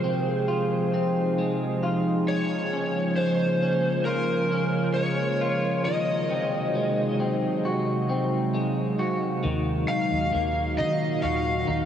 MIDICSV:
0, 0, Header, 1, 5, 480
1, 0, Start_track
1, 0, Tempo, 895522
1, 1222, Time_signature, 4, 2, 24, 8
1, 6353, End_track
2, 0, Start_track
2, 0, Title_t, "Electric slide guitar"
2, 0, Program_c, 0, 29
2, 1223, Note_on_c, 0, 73, 76
2, 1692, Note_off_c, 0, 73, 0
2, 1695, Note_on_c, 0, 72, 64
2, 2157, Note_off_c, 0, 72, 0
2, 2171, Note_on_c, 0, 70, 72
2, 2647, Note_on_c, 0, 73, 84
2, 2671, Note_off_c, 0, 70, 0
2, 3132, Note_off_c, 0, 73, 0
2, 3134, Note_on_c, 0, 75, 82
2, 3837, Note_off_c, 0, 75, 0
2, 5297, Note_on_c, 0, 77, 105
2, 5780, Note_on_c, 0, 75, 83
2, 5794, Note_off_c, 0, 77, 0
2, 6015, Note_on_c, 0, 77, 90
2, 6029, Note_off_c, 0, 75, 0
2, 6353, Note_off_c, 0, 77, 0
2, 6353, End_track
3, 0, Start_track
3, 0, Title_t, "Clean electric guitar"
3, 0, Program_c, 1, 27
3, 0, Note_on_c, 1, 53, 77
3, 0, Note_on_c, 1, 56, 54
3, 20, Note_on_c, 1, 60, 61
3, 258, Note_on_c, 1, 65, 57
3, 496, Note_off_c, 1, 60, 0
3, 503, Note_on_c, 1, 60, 51
3, 740, Note_off_c, 1, 56, 0
3, 742, Note_on_c, 1, 56, 53
3, 979, Note_off_c, 1, 65, 0
3, 982, Note_on_c, 1, 65, 60
3, 1220, Note_off_c, 1, 56, 0
3, 1221, Note_off_c, 1, 53, 0
3, 1222, Note_on_c, 1, 56, 66
3, 1270, Note_off_c, 1, 60, 0
3, 1462, Note_on_c, 1, 61, 54
3, 1700, Note_off_c, 1, 56, 0
3, 1702, Note_on_c, 1, 56, 53
3, 1937, Note_off_c, 1, 61, 0
3, 1943, Note_on_c, 1, 61, 54
3, 2176, Note_off_c, 1, 65, 0
3, 2178, Note_on_c, 1, 65, 57
3, 2417, Note_off_c, 1, 61, 0
3, 2423, Note_on_c, 1, 61, 51
3, 2658, Note_off_c, 1, 56, 0
3, 2660, Note_on_c, 1, 56, 57
3, 2895, Note_off_c, 1, 65, 0
3, 2901, Note_on_c, 1, 65, 67
3, 3142, Note_on_c, 1, 51, 77
3, 3190, Note_off_c, 1, 65, 0
3, 3191, Note_off_c, 1, 61, 0
3, 3379, Note_on_c, 1, 60, 53
3, 3617, Note_off_c, 1, 56, 0
3, 3619, Note_on_c, 1, 56, 52
3, 3852, Note_off_c, 1, 60, 0
3, 3859, Note_on_c, 1, 60, 54
3, 4101, Note_on_c, 1, 66, 56
3, 4332, Note_off_c, 1, 60, 0
3, 4339, Note_on_c, 1, 60, 52
3, 4573, Note_off_c, 1, 56, 0
3, 4579, Note_on_c, 1, 56, 55
3, 4817, Note_off_c, 1, 66, 0
3, 4820, Note_on_c, 1, 66, 63
3, 5050, Note_off_c, 1, 51, 0
3, 5056, Note_on_c, 1, 51, 71
3, 5108, Note_off_c, 1, 60, 0
3, 5109, Note_off_c, 1, 56, 0
3, 5299, Note_on_c, 1, 63, 51
3, 5534, Note_on_c, 1, 58, 53
3, 5769, Note_off_c, 1, 63, 0
3, 5775, Note_on_c, 1, 63, 55
3, 6017, Note_off_c, 1, 66, 0
3, 6019, Note_on_c, 1, 66, 55
3, 6251, Note_off_c, 1, 63, 0
3, 6257, Note_on_c, 1, 63, 54
3, 6353, Note_off_c, 1, 51, 0
3, 6353, Note_off_c, 1, 58, 0
3, 6353, Note_off_c, 1, 63, 0
3, 6353, Note_off_c, 1, 66, 0
3, 6353, End_track
4, 0, Start_track
4, 0, Title_t, "Ambient pad"
4, 0, Program_c, 2, 92
4, 0, Note_on_c, 2, 48, 79
4, 0, Note_on_c, 2, 53, 70
4, 0, Note_on_c, 2, 56, 65
4, 0, Note_on_c, 2, 68, 83
4, 0, Note_on_c, 2, 77, 70
4, 246, Note_off_c, 2, 77, 0
4, 256, Note_on_c, 2, 63, 76
4, 1201, Note_off_c, 2, 48, 0
4, 1201, Note_off_c, 2, 68, 0
4, 1210, Note_off_c, 2, 63, 0
4, 1222, Note_on_c, 2, 58, 67
4, 1223, Note_on_c, 2, 49, 75
4, 1225, Note_on_c, 2, 65, 89
4, 3119, Note_off_c, 2, 53, 0
4, 3123, Note_off_c, 2, 49, 0
4, 3123, Note_off_c, 2, 58, 0
4, 3124, Note_off_c, 2, 65, 0
4, 3135, Note_on_c, 2, 63, 69
4, 3136, Note_on_c, 2, 66, 86
4, 3138, Note_on_c, 2, 48, 82
4, 3139, Note_on_c, 2, 54, 67
4, 4090, Note_off_c, 2, 66, 0
4, 4092, Note_on_c, 2, 77, 71
4, 5039, Note_off_c, 2, 56, 0
4, 5041, Note_off_c, 2, 48, 0
4, 5047, Note_off_c, 2, 77, 0
4, 5061, Note_on_c, 2, 51, 67
4, 5062, Note_on_c, 2, 46, 76
4, 5063, Note_on_c, 2, 66, 84
4, 6353, Note_off_c, 2, 46, 0
4, 6353, Note_off_c, 2, 51, 0
4, 6353, Note_off_c, 2, 54, 0
4, 6353, Note_off_c, 2, 63, 0
4, 6353, Note_off_c, 2, 66, 0
4, 6353, End_track
5, 0, Start_track
5, 0, Title_t, "Fingered electric bass"
5, 0, Program_c, 3, 33
5, 5064, Note_on_c, 3, 39, 101
5, 5274, Note_off_c, 3, 39, 0
5, 5423, Note_on_c, 3, 39, 80
5, 5528, Note_off_c, 3, 39, 0
5, 5545, Note_on_c, 3, 39, 96
5, 5785, Note_on_c, 3, 51, 73
5, 5793, Note_off_c, 3, 39, 0
5, 5995, Note_off_c, 3, 51, 0
5, 6022, Note_on_c, 3, 39, 72
5, 6233, Note_off_c, 3, 39, 0
5, 6262, Note_on_c, 3, 39, 83
5, 6353, Note_off_c, 3, 39, 0
5, 6353, End_track
0, 0, End_of_file